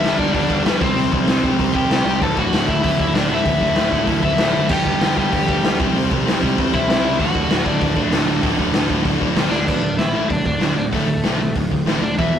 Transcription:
Already playing: E4 E5
0.02 G1 G2 D3 G3, snare, open hi-hat
0.18 G2 D3 G3 D4 D5, kick
0.33 G1 G2 D3 G3 D4 D5, kick, open hi-hat
0.49 G2 D3 G3, kick
0.64 G1 G2 D3 G3 B3 B4, snare, open hi-hat
0.80 C2 C3 G3 C4 C5, kick
0.94 C2 C3 G3 C4, open hi-hat
1.11 C2 C3 G3 C4, kick
1.24 C2 C4, snare, open hi-hat
1.28 C3 G3
1.43 C2 C3 G3 C4, kick
1.57 C2 C3 G3 C4, kick, open hi-hat
1.73 C3 G3 C4 G4 G5, kick
1.89 C2 C3 G3 C4, snare, open hi-hat
2.04 C2 C3 G3 C4
2.20 D1 D2 A2 D3 A4 A5, kick, open hi-hat
2.36 D2 A2 D3 F#4 F#5, kick
2.51 D1 D2 A2 D3, snare, open hi-hat
2.68 D2 A2 D3 E4 E5, kick
2.83 D1 D2 A2 D3 E4 E5, kick, open hi-hat
2.99 D2 A2 D3, kick
3.14 D1 D2 A2 D3 D4 D5, snare, open hi-hat
3.30 D1 D2 A2 D3 E4
3.34 E5
3.44 D1 D2 A2 D3, kick, open hi-hat
3.60 D1 D2 A2 D3, kick
3.76 D1 D2 A2 D3, snare, open hi-hat
3.91 D1 D2 A2 D3, kick
4.06 D1 D2 A2 D3, kick, open hi-hat
4.22 D2 A2 D3 E4 E5, kick
4.37 D1 D2 A2 D3, snare, open hi-hat
4.53 F#1 D2 A2 D3
4.69 G1 G2 D3 G3 G4 G5, kick, crash
4.83 G2 D3 G3, kick
5.00 G1 G2 D3 G3, snare, open hi-hat
5.15 G2 D3 G3 G4, kick
5.20 G5
5.31 G1 G2 D3 G3, kick, open hi-hat
5.47 G2 D3 G3, kick
5.62 D2 G2 D3 G3, snare, open hi-hat
5.78 C2 C3 G3 C4, kick
5.95 C2 C3 G3 C4, open hi-hat
6.10 C2 C3 G3 C4, kick
6.25 C2 C3 G3 C4, snare, open hi-hat
6.41 C2 C3 G3 C4, kick
6.56 C2 C3 G3 C4, kick, open hi-hat
6.72 C3 G3 C4 E4 E5, kick
6.88 C2 C3 G3 C4, snare, open hi-hat
7.03 C#2 C3 G3 C4
7.18 D1 D2 A2 D3 F#4 F#5, kick, open hi-hat
7.34 D2 A2 D3, kick
7.50 D1 D2 A2 D3, snare, open hi-hat
7.64 D2 A2 D3 D4 D5, kick
7.80 D1 D2 A2 D3, kick, open hi-hat
7.95 D2 A2 D3, kick
8.10 D1 D2 A2 D3, snare, open hi-hat
8.26 D1 D2 A2 D3
8.42 D1 D2 A2 D3, kick, open hi-hat
8.58 D1 D2 A2 D3, kick
8.74 D1 D2 A2 D3, snare, open hi-hat
8.88 D1 D2 A2 D3, kick
9.05 D1 D2 A2 D3, kick, open hi-hat
9.19 D2 A2 D3, kick
9.35 D1 D2 A2 D3, snare, open hi-hat
9.51 D1 D2 A2 D3 D4 D5, snare
9.66 D1 D2 A2 D3 D4 D5, kick, crash
9.82 D1 D2 A2
9.97 A1 D2 A2 E4 E5, snare, open hi-hat
10.12 D2 A2 D3
10.29 B1 D2 A2 D4 D5, kick, open hi-hat
10.46 D1 D2 A2 D4 D5, kick
10.61 D1 D2 A2 D3, snare, open hi-hat
10.77 D1 D2 A2 D4 D5
10.92 D1 D2 A2 D3 A3 A4, kick, open hi-hat
11.08 D1 D2 A2
11.22 B1 D2 A2 D3, snare, open hi-hat
11.40 D2 A2
11.55 D1 D2 A2, kick, open hi-hat
11.71 D1 D2 A2, kick
11.85 A1 D2 A2 D3, snare, open hi-hat
12.01 D1 D2 A2 D4 D5
12.17 E1 E2 B2 E3 E4 E5, kick, open hi-hat
12.33 E1 E2 B2

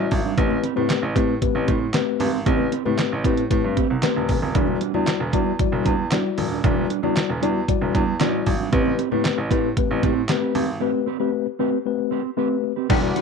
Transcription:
Already playing: G3 E4 F#4 D5 E5
0.11 G#1, muted clean electric guitar stroke, kick, open hi-hat, muted conga, low conga
0.24 G3 D4 F#4
0.37 A1 A3 C4 G4 B4, kick, closed hi-hat, muted conga, low conga
0.50 muted clean electric guitar stroke, high conga
0.63 C4 G4 B4, closed hi-hat, muted conga
0.76 A2 A3 C4 G4 B4, high conga
0.90 snare, clap, closed hi-hat, muted conga
1.02 A1, muted clean electric guitar stroke
1.15 A2 A3 C4 G4 B4, kick, closed hi-hat
1.29 muted clean electric guitar stroke
1.41 A3 C4 G4 B4, kick, closed hi-hat, low conga
1.55 A1, muted clean electric guitar stroke
1.67 A2 C4 G4 B4, kick, closed hi-hat, muted conga, high conga
1.81 muted clean electric guitar stroke
1.94 A3 C4 G4 B4, muted clean electric guitar stroke, snare, clap, closed hi-hat, muted conga
2.07 muted clean electric guitar stroke
2.19 G#1 C4 G4 B4, open hi-hat, muted conga, low conga
2.33 muted clean electric guitar stroke
2.46 A1 A3 C4 G4 B4, kick, closed hi-hat, muted conga, low conga
2.58 muted clean electric guitar stroke, high conga
2.72 C4 G4 B4, closed hi-hat
2.85 A2 A3 C4 G4 B4, high conga
2.98 snare, clap, closed hi-hat, muted conga
3.11 A1, muted clean electric guitar stroke
3.24 A2 A3 C4 G4 B4, kick, closed hi-hat
3.37 muted clean electric guitar stroke, closed hi-hat
3.50 A2 A3 C4 G4 B4, kick, closed hi-hat, low conga
3.64 G2, muted clean electric guitar stroke
3.77 C4 G4 B4, kick, closed hi-hat, muted conga, high conga
3.90 C2, muted clean electric guitar stroke
4.02 A3 C4 G4 B4, snare, clap, closed hi-hat, muted conga
4.16 D#1, muted clean electric guitar stroke
4.29 E1, muted clean electric guitar stroke, kick, open hi-hat, muted conga, low conga
4.42 D#1 C4 G4 B4
4.55 E1 G3 D4 E4 F#4 D5, kick, closed hi-hat, muted conga, low conga
4.67 muted clean electric guitar stroke, high conga
4.81 G3 D4 F#4, closed hi-hat
4.94 E2 G3 D4 E4 F#4 D5, high conga
5.07 snare, clap, closed hi-hat, muted conga
5.20 E1, muted clean electric guitar stroke
5.33 E2 G3 D4 E4 F#4 D5, kick, closed hi-hat, muted conga
5.45 muted clean electric guitar stroke
5.59 G3 E4 F#4 D5, kick, closed hi-hat, low conga
5.72 E1, muted clean electric guitar stroke
5.84 E2 G3 D4 F#4, kick, closed hi-hat, muted conga, high conga
5.98 muted clean electric guitar stroke
6.11 G3 D4 E4 F#4 D5, snare, clap, closed hi-hat, muted conga
6.24 muted clean electric guitar stroke
6.38 D#1, muted clean electric guitar stroke, open hi-hat, muted conga, low conga
6.50 G3 D4 F#4
6.63 E1 G3 D4 E4 F#4 D5, kick, closed hi-hat, low conga
6.76 muted clean electric guitar stroke, high conga
6.89 G3 D4 F#4, closed hi-hat, muted conga
7.02 E2 G3 D4 E4 F#4 D5, high conga
7.16 snare, clap, closed hi-hat
7.29 E1, muted clean electric guitar stroke
7.41 E2 G3 D4 E4 F#4 D5, closed hi-hat
7.55 muted clean electric guitar stroke
7.68 G3 E4 F#4 D5, kick, closed hi-hat, muted conga, low conga
7.81 E1, muted clean electric guitar stroke
7.94 E2 G3 D4 F#4, kick, closed hi-hat, muted conga, high conga
8.07 muted clean electric guitar stroke
8.20 A1 G3 D4 E4 F#4 D5, snare, clap, closed hi-hat, muted conga
8.33 muted clean electric guitar stroke
8.46 G#1, muted clean electric guitar stroke, kick, open hi-hat, muted conga, low conga
8.59 G3 D4 F#4
8.72 A1 A3 C4 G4 B4, kick, closed hi-hat, muted conga, low conga
8.85 muted clean electric guitar stroke, high conga
8.98 C4 G4 B4, closed hi-hat, muted conga
9.11 A2 A3 C4 G4 B4, high conga
9.24 muted clean electric guitar stroke, snare, clap, closed hi-hat
9.37 A1, muted clean electric guitar stroke
9.50 A2 A3 C4 G4 B4, kick, closed hi-hat, muted conga
9.63 muted clean electric guitar stroke
9.77 A3 C4 G4 B4, kick, closed hi-hat, muted conga, low conga
9.90 A1, muted clean electric guitar stroke
10.03 A2 C4 G4 B4, kick, closed hi-hat, muted conga, high conga
10.16 muted clean electric guitar stroke
10.28 A3 C4 G4 B4, snare, clap, closed hi-hat, muted conga
10.41 C4 G4 B4
10.54 G#1 C4 G4 B4, open hi-hat, low conga
10.68 muted clean electric guitar stroke
10.80 A3 C4 G4 B4
10.93 muted clean electric guitar stroke
11.06 C4 G4 B4
11.20 A3 C4 G4 B4
11.32 muted clean electric guitar stroke
11.46 muted clean electric guitar stroke
11.59 A3 C4 G4 B4
11.72 muted clean electric guitar stroke
11.85 A3 C4 G4 B4
11.99 muted clean electric guitar stroke
12.11 C4 G4 B4
12.25 muted clean electric guitar stroke
12.37 A3 C4 G4 B4
12.51 muted clean electric guitar stroke
12.64 muted clean electric guitar stroke
12.76 C4 G4 B4
12.89 E1 D3 G3 B3 D4 E4 F#4 G4 D5 F#5 D6, kick, closed hi-hat, crash, muted conga, low conga
13.02 G3 E4 F#4 D5, muted clean electric guitar stroke, high conga
13.16 G3 D4 F#4 B4, closed hi-hat, muted conga

